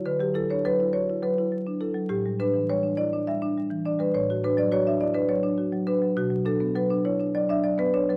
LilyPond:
\new Staff \with { instrumentName = "Marimba" } { \time 7/8 \key d \major \tempo 4 = 103 << { b'16 g'16 a'16 cis''16 b'8 cis''8 b'4 a'8 | g'8 b'8 cis''8 d''8 e''4 d''16 b'16 | cis''8 b'16 d''16 cis''16 e''16 d''16 b'16 cis''4 b'8 | fis'8 a'8 b'8 cis''8 d''16 e''16 d''16 b'16 cis''16 b'16 | } \\ { d16 fis16 e'16 d'16 fis16 e'16 fis'16 e'16 fis16 e'16 fis16 d'16 e'16 fis16 | a,16 g16 d'16 e16 g16 d'16 e'16 d'16 g16 d'16 g16 e16 d'16 g16 | a,16 fis'16 d'16 fis16 fis'16 d'16 e'16 d'16 fis16 d'16 fis'16 fis16 d'16 fis16 | b,16 fis16 d'16 b16 fis16 d'16 e'16 d'16 fis16 d'16 fis16 b16 d'16 fis16 | } >> }